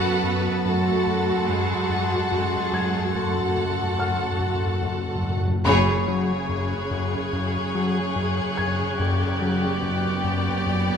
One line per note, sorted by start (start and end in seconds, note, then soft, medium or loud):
0.00 2.28 F#2 medium
0.00 0.66 B3 medium
0.00 0.62 F#4 medium
0.00 0.62 A4 medium
0.00 0.63 B4 medium
0.00 0.62 F#5 medium
0.00 3.04 B5 soft
0.00 5.21 A6 soft
0.05 0.11 F#2 soft
0.12 0.18 F#2 soft
0.19 0.26 F#2 soft
0.24 0.49 F#2 medium
0.24 0.33 F#2 soft
0.34 0.41 F#2 soft
0.42 0.48 F#2 soft
0.57 0.64 F#2 soft
0.65 0.71 F#2 soft
0.65 0.91 F#2 medium
0.65 1.49 A3 medium
0.65 3.12 F#4 medium
0.65 1.49 A4 medium
0.65 3.12 A4 medium
0.65 3.12 F#5 medium
0.65 3.04 C6 soft
0.73 0.79 F#2 soft
0.87 0.93 F#2 soft
0.94 1.00 F#2 soft
1.01 1.07 F#2 soft
1.07 1.32 F#2 medium
1.07 1.15 F#2 soft
1.16 1.22 F#2 soft
1.23 1.30 F#2 soft
1.31 1.37 F#2 soft
1.38 1.45 F#2 soft
1.46 1.52 F#2 soft
1.46 1.74 F#2 medium
1.46 2.31 G#3 medium
1.46 2.30 G#4 medium
1.53 1.59 F#2 soft
1.61 1.67 F#2 soft
1.68 1.74 F#2 soft
1.76 1.82 F#2 soft
1.83 1.90 F#2 soft
1.90 2.15 F#2 medium
1.90 1.98 F#2 soft
1.99 2.05 F#2 medium
2.06 2.12 F#2 medium
2.14 2.19 F#2 medium
2.20 2.27 F#2 medium
2.28 2.35 F#2 medium
2.28 2.57 F#2 medium
2.28 5.42 F#2 medium
2.28 3.14 G#3 medium
2.28 3.14 G#4 medium
2.37 2.43 F#2 soft
2.44 2.50 F#2 soft
2.52 2.57 F#2 soft
2.59 2.65 F#2 medium
2.66 2.72 F#2 medium
2.73 2.98 F#2 medium
2.73 2.81 F#2 medium
2.73 5.20 G#6 soft
2.82 2.88 F#2 medium
2.89 2.95 F#2 medium
2.96 3.03 F#2 medium
3.04 3.10 F#2 medium
3.04 4.38 C6 soft
3.11 3.18 F#2 medium
3.11 4.82 A4 medium
3.15 3.41 F#2 medium
3.15 4.82 A3 medium
3.15 5.42 F#4 medium
3.15 5.42 A4 medium
3.15 5.42 F#5 medium
3.19 3.25 F#2 medium
3.26 3.33 F#2 medium
3.34 3.40 F#2 medium
3.41 3.48 F#2 medium
3.49 3.55 F#2 medium
3.56 3.63 F#2 medium
3.56 3.83 F#2 medium
3.64 3.70 F#2 medium
3.71 3.77 F#2 medium
3.78 3.85 F#2 medium
3.86 3.93 F#2 medium
3.94 4.01 F#2 medium
3.99 4.24 F#2 medium
3.99 4.08 F#2 medium
3.99 5.62 F#5 soft
3.99 5.62 F6 medium
4.09 4.16 F#2 medium
4.17 4.23 F#2 medium
4.24 4.30 F#2 medium
4.32 4.38 F#2 medium
4.39 4.45 F#2 medium
4.39 4.66 F#2 medium
4.46 4.53 F#2 medium
4.54 4.61 F#2 medium
4.62 4.69 F#2 medium
4.70 4.76 F#2 medium
4.77 4.84 F#2 medium
4.82 5.07 F#2 medium
4.82 4.91 F#2 medium
4.93 4.99 F#2 medium
5.00 5.07 F#2 medium
5.08 5.14 F#2 medium
5.15 5.22 F#2 medium
5.23 5.28 F#2 medium
5.23 5.49 F#2 medium
5.29 5.35 F#2 medium
5.37 5.43 F#2 medium
5.44 5.51 F#2 medium
5.52 5.59 F#2 medium
5.65 8.95 F#1 medium
5.65 5.91 F#2 loud
5.65 6.87 F#2 medium
5.65 8.95 F#2 medium
5.65 9.79 C#3 medium
5.65 8.95 G#4 medium
5.65 8.95 C#5 medium
5.65 8.11 B5 medium
5.65 10.97 C#6 medium
5.65 10.21 G#6 soft
6.08 6.33 F#3 medium
6.49 6.74 F#2 medium
6.49 10.97 F#6 soft
6.91 7.16 F#2 loud
7.33 7.58 F#2 medium
7.75 8.00 F#3 medium
8.16 8.41 F#2 loud
8.57 8.83 F#2 medium
8.57 10.97 G#6 medium
9.00 10.97 F#1 medium
9.00 10.20 F#2 medium
9.00 9.24 F#2 loud
9.00 10.97 F#2 medium
9.00 10.97 G4 medium
9.00 10.97 D5 medium
9.41 9.66 F#3 medium
9.82 10.07 F#2 medium
9.82 10.97 B3 medium
10.24 10.49 F#2 medium
10.66 10.91 F#2 medium